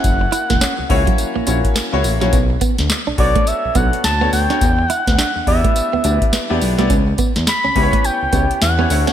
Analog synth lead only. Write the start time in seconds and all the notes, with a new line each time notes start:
Already playing: F#5
3.19 D5
3.47 E5
3.76 F#5
4.04 A5
4.33 G5
4.89 F#5
5.19 F#5
5.48 E5
7.48 B5
8.05 G5
8.62 F#5